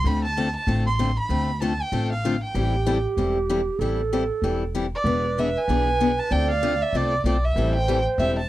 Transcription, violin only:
0.07 B5
0.25 A5
0.56 A5
0.87 C6
1.19 B5
1.63 A5
1.82 G5
2.12 F5
2.43 G5
4.95 D5
5.39 E5
5.57 G#5
6.19 A5
6.32 G5
6.50 F5
6.82 E5
6.96 D5
7.27 D5
7.45 E5
7.75 G5
8.19 E5
8.38 A5

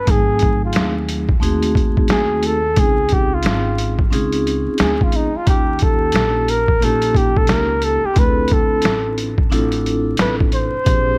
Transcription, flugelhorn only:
Already playing: B4
0.11 G#4
0.65 F4
2.12 G#4
2.46 A4
2.80 G#4
3.13 G4
3.34 F4
4.82 G#4
5.03 F4
5.16 D#4
5.37 F4
5.49 G4
5.83 A4
6.50 A#4
6.84 A4
7.17 G4
7.38 A4
7.51 A#4
7.84 A4
8.06 G4
8.19 B4
8.53 A4
10.21 B4
10.55 C5

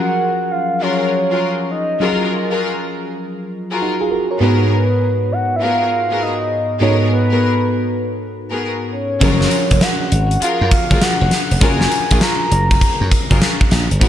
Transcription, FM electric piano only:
Already playing: F3 F#3 C#4 G#4 A#4
2.00 F#3 C#4 F4 G#4 A#4
3.82 D#4 F#4
4.01 F4 G#4
4.11 F#4 A#4
4.31 A#4 C#5
4.40 G#2 B3 D#4 F#4 B4
6.81 G#2 B3 D#4 F#4 A4
6.89 B4
9.20 F3 C#4 G#4 A#4
11.60 C#4 F4 G#4 A#4
14.00 B3 D#4 F#4 B4

